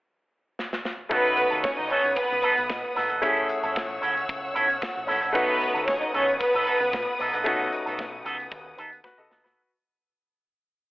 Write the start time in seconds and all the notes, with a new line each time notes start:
0.59 snare
0.73 snare
0.85 snare
1.09 B1 A3 B3 C#4 D#4 F#4 A4 B4 F#5 D#6, kick, closed hi-hat
1.25 closed hi-hat
1.37 muted clean electric guitar stroke, closed hi-hat
1.50 D#2 B3 D#4 A4, closed hi-hat
1.63 C#4 C#5, kick, snare
1.78 C#2 D#4 D#5, muted clean electric guitar stroke, closed hi-hat
1.90 B3 C#4 D#4 A4 C#5, closed hi-hat
2.04 B1, muted clean electric guitar stroke, closed hi-hat
2.16 B3 B4, muted clean electric guitar stroke, kick, closed hi-hat
2.30 C#2, muted clean electric guitar stroke, closed hi-hat
2.42 B3 D#4 A4, closed hi-hat
2.56 B1, muted clean electric guitar stroke, closed hi-hat
2.69 B2, muted clean electric guitar stroke, kick, snare
2.83 muted clean electric guitar stroke
2.95 B1 B3 D#4 A4, snare, open hi-hat
3.09 F1 B3 D#4 A4, closed hi-hat
3.21 F#1 A3 C#4 E4 G#4 A4 C#5 E6, kick, closed hi-hat
3.37 closed hi-hat
3.49 muted clean electric guitar stroke, closed hi-hat
3.63 F#1 C#4 E4 A4, closed hi-hat
3.76 A1, kick, snare
3.89 muted clean electric guitar stroke, closed hi-hat
4.01 C#2 C#4 E4 A4, closed hi-hat
4.15 muted clean electric guitar stroke, closed hi-hat
4.28 C#2, muted clean electric guitar stroke, kick, closed hi-hat
4.42 muted clean electric guitar stroke
4.54 B1 C#4 E4 A4, closed hi-hat
4.69 muted clean electric guitar stroke, closed hi-hat
4.81 muted clean electric guitar stroke, kick, snare
4.95 A1, muted clean electric guitar stroke
5.07 A1 C#4 E4 A4, snare, open hi-hat
5.21 A#1 C#4 E4 A4, closed hi-hat
5.32 B1 A3 B3 C#4 D#4 F#4 A4 B4 D#6, kick, closed hi-hat
5.61 muted clean electric guitar stroke, closed hi-hat
5.74 D#2 B3 D#4 A4, closed hi-hat
5.87 C#4 C#5, kick, snare
6.01 D#4 D#5, muted clean electric guitar stroke, closed hi-hat
6.13 C#2 B3 C#4 D#4 A4 C#5, closed hi-hat
6.28 muted clean electric guitar stroke, closed hi-hat
6.40 B3 B4, muted clean electric guitar stroke, kick, closed hi-hat
6.54 B1 B3 D#4 A4
6.67 B3 D#4 A4, closed hi-hat
6.80 C#2, muted clean electric guitar stroke, closed hi-hat
6.93 B2, muted clean electric guitar stroke, kick, snare
7.08 muted clean electric guitar stroke, closed hi-hat
7.19 B1 B3 D#4 A4, open hi-hat
7.33 A#1 B3 D#4 A4, closed hi-hat
7.44 B1 A3 B3 C#4 D#4 F#4 A4, kick, closed hi-hat
7.72 muted clean electric guitar stroke, closed hi-hat
7.86 B1 B3 D#4 A4, closed hi-hat
7.99 B1, kick, snare
8.13 muted clean electric guitar stroke
8.24 C#2 B3 D#4 A4, closed hi-hat
8.38 muted clean electric guitar stroke, closed hi-hat
8.51 D#2, muted clean electric guitar stroke, kick, closed hi-hat
8.65 muted clean electric guitar stroke
8.77 D#2 B3 D#4 A4, closed hi-hat
8.92 muted clean electric guitar stroke, closed hi-hat
9.04 F#4 B4, muted clean electric guitar stroke, kick, snare
9.18 C#2 A4 D#5, muted clean electric guitar stroke
9.30 A1 B3 D#4 A4, snare
9.44 B3 D#4 F#4 A4 B4, snare